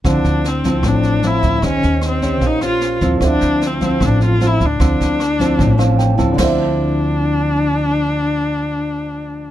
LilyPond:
<<
  \new Staff \with { instrumentName = "Grand piano" } { \time 4/4 \key d \minor \tempo 4 = 151 << { r1 | r1 | r1 | r2 r8 f''8 g''8 a''8 |
r1 | r1 | } \\ { r1 | r1 | <d' c'' e''>1~ | <d' c'' e''>1 |
<d' c'' e''>1~ | <d' c'' e''>1 | } >> }
  \new Staff \with { instrumentName = "Viola" } { \time 4/4 \key d \minor d'4 c'4 d'4 e'4 | des'4 c'4 ees'8 f'4 r8 | d'4 c'4 d'8 f'8 e'8 d'8~ | d'2.~ d'8 r8 |
d'1~ | d'1 | }
  \new Staff \with { instrumentName = "Nylon-string guitar" } { \time 4/4 \key d \minor << { <f c' e'>4 r8 <f c' e'>4. <f c' e'>4 | <des' g' c''>4. <des' g' c''>4 <des' g' c''>4 <f c' e'>8~ | <f c' e'>4. <f c' e'>4. <f c' e'>8 r8 | <f c' e'>4 r8 <f c' e'>4 <f c' e'>4 <f c' e'>8~ |
<f c' e'>4 r2. | r1 | } \\ { d2 a,2 | ees2 bes,2 | d2 a,2 | d2 a,2 |
<d f c' e'>1~ | <d f c' e'>1 | } >> }
  \new Staff \with { instrumentName = "Upright bass" } { \clef bass \time 4/4 \key d \minor d,8 d,4. a,,4. d,8 | ees,8 ees,4. bes,,4. ees,8 | d,8 d,4. a,,4. d,8 | d,8 d,4. a,,4. d,8 |
d,1~ | d,1 | }
  \new DrumStaff \with { instrumentName = "Drums" } \drummode { \time 4/4 <bd ss sn>8 sn8 sn8 <bd sn>8 <bd ss sn>8 sn8 sn8 <bd sn>8 | <bd ss sn>8 sn8 <ss sn>8 <bd sn>8 <bd sn>8 <ss sn>8 sn8 <bd sn>8 | <bd ss sn>8 sn8 sn8 <bd sn>8 <bd ss sn>8 sn8 sn8 <bd sn>8 | <bd ss sn>8 sn8 <ss sn>8 <bd sn>8 <bd sn>8 <ss sn>8 sn8 <bd sn>8 |
<cymc bd sn>4 r4 r4 r4 | r4 r4 r4 r4 | }
>>